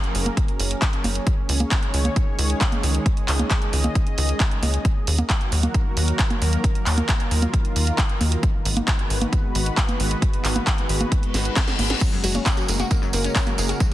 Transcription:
Already playing: F#3 A#3 C#4 G#4 A#4
0.04 closed hi-hat
0.15 F#1, open hi-hat
0.26 closed hi-hat, high conga
0.37 kick, closed hi-hat
0.48 closed hi-hat
0.59 F#1, open hi-hat
0.71 closed hi-hat
0.82 kick, clap, closed hi-hat
0.93 closed hi-hat
1.04 F#1, open hi-hat, high conga
1.15 closed hi-hat
1.27 D#3 G#3 G#4 C#5, kick, closed hi-hat
1.49 C#2, open hi-hat
1.60 closed hi-hat, high conga
1.71 kick, clap, closed hi-hat
1.83 closed hi-hat
1.94 C#2, open hi-hat
2.05 closed hi-hat, high conga
2.16 kick, closed hi-hat
2.39 C#2, open hi-hat
2.50 closed hi-hat
2.61 kick, clap, closed hi-hat
2.72 closed hi-hat, high conga
2.83 C#2, open hi-hat
2.95 closed hi-hat
3.06 D#5, kick, closed hi-hat
3.17 closed hi-hat
3.28 C#2, clap, open hi-hat
3.39 closed hi-hat, high conga
3.51 kick, clap, closed hi-hat
3.62 closed hi-hat
3.73 C#2, open hi-hat
3.84 closed hi-hat, high conga
3.95 kick, closed hi-hat
4.07 closed hi-hat
4.18 C#2, open hi-hat
4.29 closed hi-hat
4.40 kick, clap, closed hi-hat
4.51 closed hi-hat
4.63 C#2, open hi-hat, high conga
4.74 closed hi-hat
4.85 D#3 F#3 A#3 F#4 A#4, kick, closed hi-hat
5.07 D#2, open hi-hat
5.18 closed hi-hat, high conga
5.30 kick, clap, closed hi-hat
5.41 closed hi-hat
5.52 D#2, open hi-hat
5.63 closed hi-hat, high conga
5.74 kick, closed hi-hat
5.97 D#2, open hi-hat
6.08 closed hi-hat
6.19 kick, clap, closed hi-hat
6.30 closed hi-hat, high conga
6.42 D#2, open hi-hat
6.53 closed hi-hat
6.64 F4, kick, closed hi-hat
6.75 closed hi-hat
6.86 D#2, clap, open hi-hat
6.98 closed hi-hat, high conga
7.09 kick, clap, closed hi-hat
7.20 closed hi-hat
7.31 D#2, open hi-hat
7.42 closed hi-hat, high conga
7.54 kick, closed hi-hat
7.65 closed hi-hat
7.76 D#2, open hi-hat
7.87 closed hi-hat
7.98 kick, clap, closed hi-hat
8.10 closed hi-hat
8.21 D#2, open hi-hat, high conga
8.32 closed hi-hat
8.43 G#3 B3 F#4 B4, kick, closed hi-hat
8.65 G#1, open hi-hat
8.77 closed hi-hat, high conga
8.88 kick, clap, closed hi-hat
8.99 closed hi-hat
9.10 G#1, open hi-hat
9.21 closed hi-hat, high conga
9.33 kick, closed hi-hat
9.55 G#1, open hi-hat
9.66 closed hi-hat
9.77 kick, clap, closed hi-hat
9.89 closed hi-hat, high conga
10.00 G#1, open hi-hat
10.11 closed hi-hat
10.22 kick, closed hi-hat
10.33 closed hi-hat
10.45 G#1, clap, open hi-hat
10.56 closed hi-hat, high conga
10.67 kick, clap, closed hi-hat
10.78 closed hi-hat
10.89 G#1, open hi-hat
11.01 closed hi-hat, high conga
11.12 kick, closed hi-hat, reverse cymbal
11.23 closed hi-hat
11.34 G#1, snare, open hi-hat
11.45 closed hi-hat
11.56 kick, snare, clap, closed hi-hat
11.68 snare, closed hi-hat
11.79 G#1, open hi-hat, high conga
11.90 snare, closed hi-hat
12.01 C#3 F#3 A#3 A#4, kick, closed hi-hat, crash, tambourine
12.12 F#2, tambourine
12.24 F#1 F#3, open hi-hat, tambourine
12.35 C#4, closed hi-hat, tambourine, high conga
12.46 kick, clap, closed hi-hat, tambourine
12.57 F#3, closed hi-hat, tambourine
12.68 F#1 G#3, open hi-hat, tambourine
12.80 F#4, closed hi-hat, tambourine, high conga
12.91 A#3, kick, closed hi-hat, tambourine
13.02 F#2, tambourine
13.13 F#1 A#3, open hi-hat, tambourine
13.24 C#4, closed hi-hat, tambourine
13.36 C#4, kick, clap, closed hi-hat, tambourine
13.46 F#3, closed hi-hat, tambourine, high conga
13.58 F#1 G#3, open hi-hat, tambourine
13.68 F#4, closed hi-hat, tambourine
13.80 F#3 F4, kick, closed hi-hat, tambourine

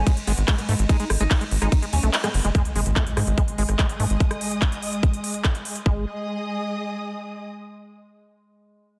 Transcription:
Already playing: G#3 C#4
0.07 G#3, kick, closed hi-hat, ride
0.17 closed hi-hat
0.27 G#1 G#3 B3, open hi-hat
0.38 G#1, closed hi-hat
0.48 G#3, kick, cross-stick, clap, closed hi-hat, ride
0.58 B3, closed hi-hat
0.69 G#2 A3, open hi-hat
0.79 G#1, closed hi-hat
0.89 G#3 D#4, kick, closed hi-hat, ride
1.00 G#3, closed hi-hat
1.10 G#1, cross-stick, open hi-hat
1.20 G#1 G#3 D#4, closed hi-hat
1.31 kick, clap, closed hi-hat, ride
1.41 G#3, closed hi-hat
1.51 G#1, open hi-hat
1.62 G#1 G#3 D#4, cross-stick, closed hi-hat
1.72 kick, closed hi-hat, ride
1.82 G#3, closed hi-hat
1.93 D#2 C#4, open hi-hat
2.03 B1 A3, closed hi-hat
2.13 clap, closed hi-hat, ride
2.24 G#3 B3, cross-stick, closed hi-hat
2.34 F#1, open hi-hat
2.45 F#1 G#3, closed hi-hat
2.55 G#3, kick, cross-stick, closed hi-hat, impact
2.65 closed hi-hat
2.76 G#1 G#3 G#4, open hi-hat
2.86 G#1, closed hi-hat
2.96 A3, kick, clap, closed hi-hat
3.07 closed hi-hat
3.17 G#2 G#3, cross-stick, open hi-hat
3.24 G#1 D#5, closed hi-hat
3.38 G#3, kick, closed hi-hat
3.48 closed hi-hat
3.58 G#1 G#3, open hi-hat
3.69 G#1, cross-stick, closed hi-hat
3.79 G#3 D#6, kick, clap, closed hi-hat
3.89 closed hi-hat
4.00 G#2 A3, open hi-hat
4.10 G#1, closed hi-hat
4.20 kick, closed hi-hat
4.31 cross-stick, closed hi-hat
4.41 open hi-hat
4.51 closed hi-hat
4.62 kick, clap, closed hi-hat
4.72 closed hi-hat
4.82 open hi-hat
4.93 closed hi-hat
5.03 kick, closed hi-hat
5.13 closed hi-hat
5.24 open hi-hat
5.34 closed hi-hat
5.45 kick, cross-stick, clap, closed hi-hat
5.55 closed hi-hat
5.65 open hi-hat
5.76 closed hi-hat
5.86 G#1 G#3, kick
5.92 G#4
5.98 D#5
6.05 D#6

